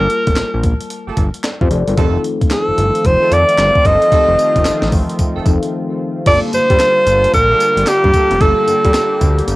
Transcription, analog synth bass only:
0, 0, Header, 1, 2, 480
1, 0, Start_track
1, 0, Key_signature, -2, "minor"
1, 0, Tempo, 535714
1, 1770, Time_signature, 4, 2, 24, 8
1, 8564, End_track
2, 0, Start_track
2, 0, Title_t, "Analog synth bass"
2, 0, Program_c, 0, 38
2, 2, Note_on_c, 0, 31, 99
2, 69, Note_off_c, 0, 31, 0
2, 243, Note_on_c, 0, 29, 91
2, 310, Note_off_c, 0, 29, 0
2, 330, Note_on_c, 0, 34, 52
2, 391, Note_off_c, 0, 34, 0
2, 483, Note_on_c, 0, 34, 87
2, 666, Note_off_c, 0, 34, 0
2, 961, Note_on_c, 0, 31, 46
2, 997, Note_off_c, 0, 31, 0
2, 1049, Note_on_c, 0, 31, 94
2, 1166, Note_off_c, 0, 31, 0
2, 1444, Note_on_c, 0, 41, 96
2, 1511, Note_off_c, 0, 41, 0
2, 1528, Note_on_c, 0, 29, 89
2, 1645, Note_off_c, 0, 29, 0
2, 1681, Note_on_c, 0, 31, 83
2, 1749, Note_off_c, 0, 31, 0
2, 1770, Note_on_c, 0, 29, 112
2, 1953, Note_off_c, 0, 29, 0
2, 2163, Note_on_c, 0, 31, 48
2, 2198, Note_off_c, 0, 31, 0
2, 2402, Note_on_c, 0, 31, 50
2, 2438, Note_off_c, 0, 31, 0
2, 2489, Note_on_c, 0, 31, 88
2, 2605, Note_off_c, 0, 31, 0
2, 2731, Note_on_c, 0, 29, 93
2, 2847, Note_off_c, 0, 29, 0
2, 2969, Note_on_c, 0, 41, 108
2, 3086, Note_off_c, 0, 41, 0
2, 3208, Note_on_c, 0, 31, 91
2, 3325, Note_off_c, 0, 31, 0
2, 3449, Note_on_c, 0, 31, 89
2, 3566, Note_off_c, 0, 31, 0
2, 3839, Note_on_c, 0, 29, 96
2, 3908, Note_off_c, 0, 29, 0
2, 4084, Note_on_c, 0, 29, 92
2, 4151, Note_off_c, 0, 29, 0
2, 4169, Note_on_c, 0, 33, 50
2, 4230, Note_off_c, 0, 33, 0
2, 4321, Note_on_c, 0, 33, 90
2, 4505, Note_off_c, 0, 33, 0
2, 4804, Note_on_c, 0, 29, 49
2, 4839, Note_off_c, 0, 29, 0
2, 4890, Note_on_c, 0, 29, 100
2, 5006, Note_off_c, 0, 29, 0
2, 5612, Note_on_c, 0, 31, 109
2, 5727, Note_off_c, 0, 31, 0
2, 5852, Note_on_c, 0, 43, 53
2, 5912, Note_off_c, 0, 43, 0
2, 6004, Note_on_c, 0, 43, 101
2, 6071, Note_off_c, 0, 43, 0
2, 6330, Note_on_c, 0, 31, 103
2, 6514, Note_off_c, 0, 31, 0
2, 6574, Note_on_c, 0, 34, 100
2, 6756, Note_off_c, 0, 34, 0
2, 6960, Note_on_c, 0, 31, 92
2, 7028, Note_off_c, 0, 31, 0
2, 7205, Note_on_c, 0, 43, 102
2, 7272, Note_off_c, 0, 43, 0
2, 7444, Note_on_c, 0, 29, 98
2, 7511, Note_off_c, 0, 29, 0
2, 7532, Note_on_c, 0, 31, 120
2, 7648, Note_off_c, 0, 31, 0
2, 7771, Note_on_c, 0, 43, 51
2, 7832, Note_off_c, 0, 43, 0
2, 7926, Note_on_c, 0, 43, 99
2, 7992, Note_off_c, 0, 43, 0
2, 8254, Note_on_c, 0, 38, 90
2, 8436, Note_off_c, 0, 38, 0
2, 8491, Note_on_c, 0, 31, 94
2, 8564, Note_off_c, 0, 31, 0
2, 8564, End_track
0, 0, End_of_file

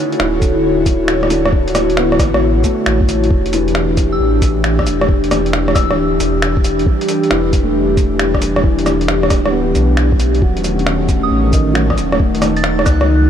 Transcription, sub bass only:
0, 0, Header, 1, 2, 480
1, 0, Start_track
1, 0, Tempo, 444444
1, 1652, Time_signature, 4, 2, 24, 8
1, 14363, End_track
2, 0, Start_track
2, 0, Title_t, "Sub bass"
2, 0, Program_c, 0, 38
2, 211, Note_on_c, 0, 26, 89
2, 2362, Note_off_c, 0, 26, 0
2, 2367, Note_on_c, 0, 33, 107
2, 2840, Note_off_c, 0, 33, 0
2, 3089, Note_on_c, 0, 33, 81
2, 3318, Note_off_c, 0, 33, 0
2, 3328, Note_on_c, 0, 33, 91
2, 3558, Note_off_c, 0, 33, 0
2, 3572, Note_on_c, 0, 28, 99
2, 4522, Note_off_c, 0, 28, 0
2, 4535, Note_on_c, 0, 33, 86
2, 5244, Note_off_c, 0, 33, 0
2, 5259, Note_on_c, 0, 28, 96
2, 6206, Note_off_c, 0, 28, 0
2, 6214, Note_on_c, 0, 26, 106
2, 6683, Note_off_c, 0, 26, 0
2, 6694, Note_on_c, 0, 28, 105
2, 7163, Note_off_c, 0, 28, 0
2, 7175, Note_on_c, 0, 28, 94
2, 7401, Note_off_c, 0, 28, 0
2, 7894, Note_on_c, 0, 28, 91
2, 10043, Note_off_c, 0, 28, 0
2, 10053, Note_on_c, 0, 26, 103
2, 10522, Note_off_c, 0, 26, 0
2, 10536, Note_on_c, 0, 35, 95
2, 11244, Note_off_c, 0, 35, 0
2, 11256, Note_on_c, 0, 27, 100
2, 12204, Note_off_c, 0, 27, 0
2, 12214, Note_on_c, 0, 33, 89
2, 12923, Note_off_c, 0, 33, 0
2, 12939, Note_on_c, 0, 27, 99
2, 13886, Note_off_c, 0, 27, 0
2, 13895, Note_on_c, 0, 37, 104
2, 14363, Note_off_c, 0, 37, 0
2, 14363, End_track
0, 0, End_of_file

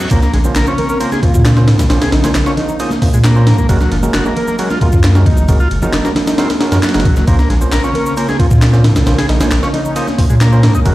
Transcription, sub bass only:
0, 0, Header, 1, 2, 480
1, 0, Start_track
1, 0, Key_signature, -5, "minor"
1, 0, Tempo, 447761
1, 118, Time_signature, 4, 2, 24, 8
1, 11735, End_track
2, 0, Start_track
2, 0, Title_t, "Sub bass"
2, 0, Program_c, 0, 38
2, 116, Note_on_c, 0, 34, 102
2, 200, Note_off_c, 0, 34, 0
2, 356, Note_on_c, 0, 34, 95
2, 521, Note_off_c, 0, 34, 0
2, 593, Note_on_c, 0, 34, 86
2, 678, Note_off_c, 0, 34, 0
2, 1441, Note_on_c, 0, 46, 96
2, 1792, Note_on_c, 0, 44, 91
2, 1809, Note_off_c, 0, 46, 0
2, 1915, Note_on_c, 0, 34, 82
2, 1931, Note_off_c, 0, 44, 0
2, 1997, Note_off_c, 0, 34, 0
2, 2031, Note_on_c, 0, 34, 99
2, 2118, Note_off_c, 0, 34, 0
2, 2275, Note_on_c, 0, 34, 98
2, 2396, Note_off_c, 0, 34, 0
2, 2403, Note_on_c, 0, 34, 45
2, 2495, Note_off_c, 0, 34, 0
2, 2516, Note_on_c, 0, 34, 88
2, 2600, Note_off_c, 0, 34, 0
2, 3363, Note_on_c, 0, 46, 91
2, 3718, Note_on_c, 0, 44, 90
2, 3734, Note_off_c, 0, 46, 0
2, 3838, Note_on_c, 0, 34, 82
2, 3854, Note_off_c, 0, 44, 0
2, 3918, Note_off_c, 0, 34, 0
2, 3957, Note_on_c, 0, 30, 98
2, 4040, Note_off_c, 0, 30, 0
2, 4198, Note_on_c, 0, 30, 100
2, 4362, Note_off_c, 0, 30, 0
2, 4436, Note_on_c, 0, 30, 91
2, 4520, Note_off_c, 0, 30, 0
2, 5282, Note_on_c, 0, 42, 94
2, 5641, Note_on_c, 0, 37, 93
2, 5657, Note_off_c, 0, 42, 0
2, 5763, Note_on_c, 0, 30, 82
2, 5779, Note_off_c, 0, 37, 0
2, 5841, Note_off_c, 0, 30, 0
2, 5879, Note_on_c, 0, 30, 102
2, 5961, Note_off_c, 0, 30, 0
2, 6118, Note_on_c, 0, 30, 96
2, 6231, Note_off_c, 0, 30, 0
2, 6238, Note_on_c, 0, 30, 45
2, 6333, Note_off_c, 0, 30, 0
2, 6355, Note_on_c, 0, 30, 91
2, 6439, Note_off_c, 0, 30, 0
2, 7200, Note_on_c, 0, 42, 93
2, 7279, Note_off_c, 0, 42, 0
2, 7444, Note_on_c, 0, 30, 100
2, 7560, Note_on_c, 0, 34, 88
2, 7576, Note_off_c, 0, 30, 0
2, 7642, Note_off_c, 0, 34, 0
2, 7680, Note_on_c, 0, 30, 103
2, 7759, Note_off_c, 0, 30, 0
2, 7800, Note_on_c, 0, 34, 104
2, 7882, Note_off_c, 0, 34, 0
2, 8033, Note_on_c, 0, 34, 98
2, 8199, Note_off_c, 0, 34, 0
2, 8276, Note_on_c, 0, 34, 87
2, 8360, Note_off_c, 0, 34, 0
2, 9122, Note_on_c, 0, 46, 92
2, 9479, Note_on_c, 0, 44, 94
2, 9495, Note_off_c, 0, 46, 0
2, 9596, Note_on_c, 0, 34, 83
2, 9612, Note_off_c, 0, 44, 0
2, 9677, Note_off_c, 0, 34, 0
2, 9715, Note_on_c, 0, 34, 101
2, 9799, Note_off_c, 0, 34, 0
2, 9957, Note_on_c, 0, 34, 95
2, 10072, Note_off_c, 0, 34, 0
2, 10079, Note_on_c, 0, 34, 46
2, 10173, Note_off_c, 0, 34, 0
2, 10199, Note_on_c, 0, 34, 88
2, 10281, Note_off_c, 0, 34, 0
2, 11042, Note_on_c, 0, 46, 93
2, 11398, Note_on_c, 0, 44, 93
2, 11414, Note_off_c, 0, 46, 0
2, 11521, Note_on_c, 0, 34, 83
2, 11537, Note_off_c, 0, 44, 0
2, 11600, Note_off_c, 0, 34, 0
2, 11636, Note_on_c, 0, 30, 98
2, 11720, Note_off_c, 0, 30, 0
2, 11735, End_track
0, 0, End_of_file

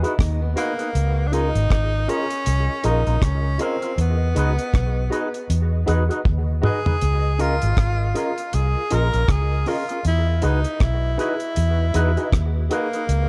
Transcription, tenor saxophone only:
0, 0, Header, 1, 2, 480
1, 0, Start_track
1, 0, Tempo, 759494
1, 598, Time_signature, 4, 2, 24, 8
1, 8399, End_track
2, 0, Start_track
2, 0, Title_t, "Tenor saxophone"
2, 0, Program_c, 0, 66
2, 359, Note_on_c, 0, 58, 94
2, 804, Note_on_c, 0, 62, 81
2, 813, Note_off_c, 0, 58, 0
2, 842, Note_on_c, 0, 63, 103
2, 852, Note_off_c, 0, 62, 0
2, 1325, Note_on_c, 0, 61, 97
2, 1335, Note_off_c, 0, 63, 0
2, 1803, Note_on_c, 0, 63, 84
2, 1813, Note_off_c, 0, 61, 0
2, 2045, Note_on_c, 0, 61, 91
2, 2055, Note_off_c, 0, 63, 0
2, 2279, Note_on_c, 0, 60, 86
2, 2288, Note_off_c, 0, 61, 0
2, 2515, Note_off_c, 0, 60, 0
2, 2531, Note_on_c, 0, 59, 81
2, 3455, Note_off_c, 0, 59, 0
2, 4204, Note_on_c, 0, 68, 96
2, 4683, Note_on_c, 0, 65, 98
2, 4692, Note_off_c, 0, 68, 0
2, 5156, Note_off_c, 0, 65, 0
2, 5167, Note_on_c, 0, 65, 82
2, 5399, Note_on_c, 0, 68, 93
2, 5408, Note_off_c, 0, 65, 0
2, 5646, Note_on_c, 0, 70, 99
2, 5656, Note_off_c, 0, 68, 0
2, 5882, Note_on_c, 0, 68, 102
2, 5892, Note_off_c, 0, 70, 0
2, 6120, Note_on_c, 0, 65, 89
2, 6130, Note_off_c, 0, 68, 0
2, 6356, Note_off_c, 0, 65, 0
2, 6362, Note_on_c, 0, 64, 94
2, 6580, Note_off_c, 0, 64, 0
2, 6603, Note_on_c, 0, 63, 83
2, 6840, Note_on_c, 0, 64, 93
2, 6849, Note_off_c, 0, 63, 0
2, 7073, Note_off_c, 0, 64, 0
2, 7077, Note_on_c, 0, 64, 91
2, 7853, Note_off_c, 0, 64, 0
2, 8039, Note_on_c, 0, 58, 87
2, 8399, Note_off_c, 0, 58, 0
2, 8399, End_track
0, 0, End_of_file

